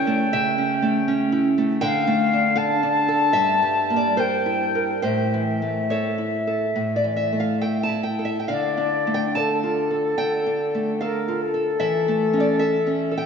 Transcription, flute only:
Already playing: G5
1.85 F5
2.58 A5
4.20 G5
5.05 E5
8.50 D5
9.38 A4
11.04 A#4
11.42 A4

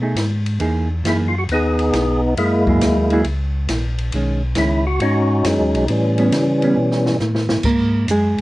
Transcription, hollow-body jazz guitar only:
0.02 A3 D#4 G#4
0.60 E3 A#3 D#4 G#4
1.05 E3 A#3 D#4 G#4
2.67 F#3 A#3 E4 G#4
3.12 F#3 A#3 E4 G#4
4.14 D#3 G#3 C#4
4.56 D#3 G#3 C#4
6.18 G3 B3 C#4
6.63 G3 B3 C#4
7.65 A#3 A#4
8.11 G#3 G#4

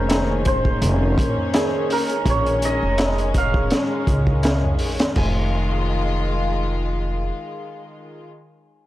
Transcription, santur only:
Already playing: G#4 A#4 C5
0.47 C5
1.55 G#4
1.92 A#4
2.30 C#5
2.65 D#5
3.38 F5
5.17 G#5

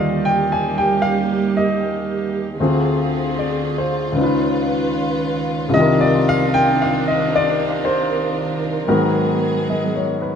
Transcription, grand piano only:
Already playing: D#2 D3 D#3 F4 G4 D5 D#5 F5
0.25 G5
0.52 G#5
0.78 G5
1.02 F5
1.57 D#5
2.60 D2 D3 C4 F4 G#4
3.39 D5
3.78 C5
4.12 C#2 C#3
4.17 D#4 F4
4.23 B4
5.69 C2 C3
5.74 D#3 D4 F4 D#5
5.80 A#4
6.01 D5
6.29 F5
6.54 G5
6.82 F5
7.08 D#5
7.36 D5
7.85 C5
8.88 G#2 D#3 B3 F#4 A#4
9.70 D#5
9.95 C#5
10.22 B4

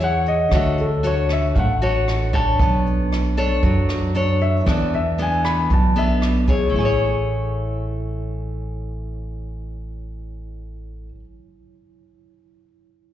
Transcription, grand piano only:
0.04 F#5
0.28 D#5
0.55 E5
0.81 A4
1.07 C#5
1.32 E5
1.55 F5
1.59 F#5
2.35 A5
4.42 E5
4.71 D5
4.95 E5
5.22 G#5
5.45 B5
5.74 A5
5.98 E5

